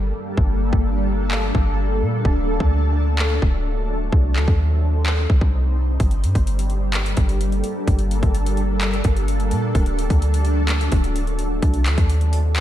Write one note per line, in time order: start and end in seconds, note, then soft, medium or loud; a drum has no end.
0.00 0.12 G1 loud
0.00 2.21 G3 medium
0.00 2.21 A#3 medium
0.00 4.08 D4 medium
0.00 4.08 A4 medium
0.37 0.71 G1 loud
0.37 kick loud
0.73 1.51 G1 loud
0.73 kick medium
1.31 clap loud
1.55 2.03 G1 loud
1.55 kick loud
2.02 2.24 A#2 loud
2.25 2.59 D1 loud
2.25 4.11 F#3 medium
2.25 4.11 A3 medium
2.25 kick loud
2.60 3.39 D2 loud
2.60 kick medium
3.19 clap loud
3.42 4.10 D1 loud
3.42 kick loud
4.12 4.37 C2 loud
4.12 9.71 G3 medium
4.12 5.98 C4 medium
4.12 5.98 D#4 medium
4.12 5.98 C5 medium
4.12 kick loud
4.36 4.47 D2 loud
4.36 clap medium
4.48 5.26 D#2 loud
4.48 kick medium
5.06 clap loud
5.30 5.41 C2 loud
5.30 kick loud
5.41 5.98 C2 loud
5.41 kick loud
6.00 6.25 G1 loud
6.00 9.71 A#3 medium
6.00 11.58 D4 medium
6.00 11.59 A4 medium
6.00 kick loud
6.00 closed hi-hat medium
6.11 closed hi-hat medium
6.23 6.35 G2 loud
6.23 closed hi-hat medium
6.35 7.14 G1 loud
6.35 kick medium
6.35 closed hi-hat medium
6.47 closed hi-hat medium
6.59 closed hi-hat medium
6.70 closed hi-hat medium
6.93 clap loud
6.93 closed hi-hat medium
7.06 closed hi-hat medium
7.17 7.62 G1 loud
7.17 kick loud
7.17 closed hi-hat medium
7.29 closed hi-hat soft
7.41 closed hi-hat medium
7.52 closed hi-hat soft
7.64 closed hi-hat medium
7.87 8.21 G1 loud
7.87 kick loud
7.87 closed hi-hat medium
7.99 closed hi-hat medium
8.11 closed hi-hat medium
8.23 9.01 G1 loud
8.23 kick medium
8.23 closed hi-hat medium
8.35 closed hi-hat medium
8.46 closed hi-hat medium
8.57 closed hi-hat medium
8.81 clap loud
8.81 closed hi-hat medium
8.93 closed hi-hat medium
9.04 9.53 G1 loud
9.04 kick loud
9.04 closed hi-hat medium
9.16 closed hi-hat soft
9.28 closed hi-hat medium
9.40 closed hi-hat soft
9.51 9.74 A#2 loud
9.51 closed hi-hat medium
9.75 10.09 D1 loud
9.75 11.61 F#3 medium
9.75 11.61 A3 medium
9.75 kick loud
9.75 closed hi-hat medium
9.86 closed hi-hat medium
9.99 closed hi-hat medium
10.10 10.89 D2 loud
10.10 kick medium
10.10 closed hi-hat medium
10.22 closed hi-hat medium
10.34 closed hi-hat medium
10.45 closed hi-hat medium
10.68 clap loud
10.68 closed hi-hat medium
10.81 closed hi-hat medium
10.92 11.60 D1 loud
10.92 kick loud
10.92 closed hi-hat medium
11.04 closed hi-hat medium
11.16 closed hi-hat medium
11.27 closed hi-hat soft
11.39 closed hi-hat medium
11.62 11.87 C2 loud
11.62 12.60 G3 medium
11.62 12.60 C4 medium
11.62 12.60 D#4 medium
11.62 12.60 C5 medium
11.62 kick loud
11.62 closed hi-hat medium
11.74 closed hi-hat medium
11.86 11.97 D2 loud
11.86 clap medium
11.86 closed hi-hat medium
11.98 12.60 D#2 loud
11.98 kick medium
11.98 closed hi-hat medium
12.10 closed hi-hat medium
12.21 closed hi-hat medium
12.33 closed hi-hat medium
12.56 clap loud
12.56 closed hi-hat medium